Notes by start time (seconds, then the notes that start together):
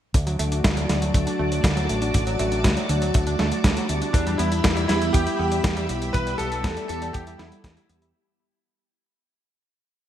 0.14 D2 D3 F#4 D5 A5 D6, kick, closed hi-hat
0.27 F#3, closed hi-hat
0.39 D2 F#3 A3 D4 F#4, closed hi-hat
0.52 D4, closed hi-hat
0.64 D2 A3, kick, snare, closed hi-hat
0.77 F#3, closed hi-hat
0.89 D2 D3 F#3 A3 D4 F#4, snare, closed hi-hat
1.02 F#3, closed hi-hat
1.14 D2 A3, kick, closed hi-hat
1.27 D4, closed hi-hat
1.39 D2 F#3 A3 D4 F#4
1.52 F#3, closed hi-hat
1.64 D2 D3, kick, snare, closed hi-hat
1.77 F#3 A3 D4 F#4, closed hi-hat
1.89 A1 F#3 A3 D4 F#4, closed hi-hat
2.02 D4, closed hi-hat
2.14 A1 D3, kick, closed hi-hat
2.27 F#3, closed hi-hat
2.39 A1 F#3 A3 D4 F#4, closed hi-hat
2.52 D4, closed hi-hat
2.64 D2 A3, kick, snare, closed hi-hat
2.77 F#3, closed hi-hat
2.89 D2 D3 F#3 A3 D4 F#4, closed hi-hat
3.02 F#3, closed hi-hat
3.14 D2 A3, kick, closed hi-hat
3.27 D4, closed hi-hat
3.39 D2 F#3 A3 D4 F#4, snare
3.52 F#3, closed hi-hat
3.64 D2 D3, kick, snare, closed hi-hat
3.77 F#3 A3 D4 F#4, closed hi-hat
3.89 D2 G3 A3 B3 E4 G4, closed hi-hat
4.02 D4, closed hi-hat
4.13 E2 E3 D4 G4 E5 B5 E6, kick, closed hi-hat
4.27 G3, closed hi-hat
4.38 E2 G3 B3 E4 G4, closed hi-hat
4.52 E4, closed hi-hat
4.64 E2 B3, kick, snare, closed hi-hat
4.77 G3, closed hi-hat
4.88 E2 E3 G3 B3 E4 G4, snare, closed hi-hat
5.02 G3, closed hi-hat
5.13 E2 B3 G4, kick, closed hi-hat
5.27 E4, closed hi-hat
5.39 E2 G3 B3 E4 G4
5.52 G3, closed hi-hat
5.64 E2 E3, kick, snare, closed hi-hat
5.77 G3 B3 E4 G4, closed hi-hat
5.89 B1 G3 B3 E4 G4, closed hi-hat
6.02 E4, closed hi-hat
6.13 B1 E3 B4, kick, closed hi-hat
6.27 G3, closed hi-hat
6.38 B1 G3 B3 E4 G4 A4, closed hi-hat
6.52 E4, closed hi-hat
6.64 E2 B3, kick, snare, closed hi-hat
6.77 G3, closed hi-hat
6.88 E2 E3 G3 B3 E4 G4 A4, closed hi-hat
7.02 G3, closed hi-hat
7.13 E2 B3 G4, kick, closed hi-hat
7.27 E4, closed hi-hat
7.38 E2 G3 B3 E4 A4, snare
7.52 G3 B3 E4 A4, closed hi-hat
7.64 E2 E3, kick, snare, closed hi-hat
7.77 G3, closed hi-hat
7.89 E2 G3 B3 E4 G4, closed hi-hat
8.02 E4, closed hi-hat